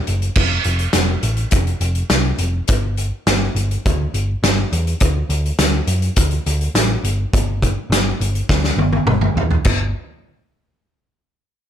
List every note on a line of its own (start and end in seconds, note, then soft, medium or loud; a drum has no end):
0.07 0.28 F#1 medium
0.07 closed hi-hat medium
0.22 closed hi-hat soft
0.35 0.57 F1 medium
0.35 kick loud
0.35 crash loud
0.64 0.86 F1 medium
0.64 closed hi-hat medium
0.79 closed hi-hat soft
0.93 1.15 F1 medium
0.93 snare loud
0.93 closed hi-hat loud
1.23 1.44 A1 medium
1.23 closed hi-hat medium
1.37 closed hi-hat soft
1.51 1.73 F1 medium
1.51 kick loud
1.51 closed hi-hat loud
1.67 closed hi-hat soft
1.80 2.01 F1 medium
1.80 closed hi-hat medium
1.95 closed hi-hat soft
2.10 2.31 C2 medium
2.10 snare loud
2.10 closed hi-hat loud
2.38 2.60 F1 medium
2.38 closed hi-hat medium
2.68 3.10 G1 medium
2.68 kick loud
2.68 closed hi-hat loud
2.97 closed hi-hat medium
3.27 3.47 G1 loud
3.27 snare loud
3.27 closed hi-hat loud
3.55 3.76 G1 medium
3.55 closed hi-hat medium
3.71 closed hi-hat soft
3.86 4.06 D2 medium
3.86 kick loud
3.86 closed hi-hat loud
4.14 4.34 G1 medium
4.14 closed hi-hat medium
4.43 4.63 G1 medium
4.43 snare loud
4.43 closed hi-hat loud
4.72 4.93 E2 medium
4.72 closed hi-hat medium
4.87 closed hi-hat soft
5.00 5.21 D2 loud
5.00 kick loud
5.00 closed hi-hat loud
5.29 5.50 D2 medium
5.29 closed hi-hat medium
5.45 closed hi-hat medium
5.59 5.79 D2 loud
5.59 snare loud
5.59 closed hi-hat loud
5.87 6.08 F#2 medium
5.87 closed hi-hat medium
6.02 closed hi-hat soft
6.16 6.37 D2 loud
6.16 kick loud
6.16 closed hi-hat loud
6.31 closed hi-hat soft
6.46 6.67 D2 medium
6.46 closed hi-hat medium
6.61 closed hi-hat soft
6.74 6.95 A1 medium
6.74 snare loud
6.74 closed hi-hat loud
7.03 7.24 G1 medium
7.03 closed hi-hat medium
7.34 7.75 G1 medium
7.34 kick loud
7.34 closed hi-hat loud
7.62 kick medium
7.62 closed hi-hat medium
7.90 8.11 G1 loud
7.90 snare loud
7.90 closed hi-hat loud
8.20 8.41 G1 medium
8.20 closed hi-hat medium
8.35 closed hi-hat soft
8.49 8.70 D2 medium
8.49 kick loud
8.49 snare medium
8.64 snare medium
8.76 8.98 G1 medium
8.76 high tom medium
8.93 high tom medium
9.05 9.27 G1 medium
9.05 mid tom medium
9.21 mid tom medium
9.36 9.56 E2 loud
9.36 floor tom loud
9.51 floor tom medium
9.64 9.92 G1 medium
9.64 kick loud
9.64 crash medium